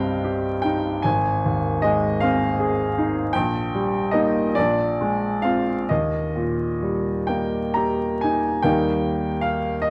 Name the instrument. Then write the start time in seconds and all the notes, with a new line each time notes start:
grand piano
Already playing: C2 G2 G3 C4 D#5 F5 G5
0.24 G4
0.62 D#4 G5
1.02 G#1 G#5
1.46 D#2
1.82 G#3 D#5
2.20 C4 F5
2.60 G#4
2.98 D#4
3.33 A#1 G5
3.74 G3
4.11 A#3 D#4 D#5
4.55 A#1 D5
5.01 G#3
5.42 C4 F4 F5
5.89 D#2 D#5
6.36 A#2
6.82 G3
7.27 A#3 G5
7.74 G4 A#5
8.21 D#4 G#5
8.62 D#2 G3 A#3 D#4 G5
9.41 F5
9.82 D#5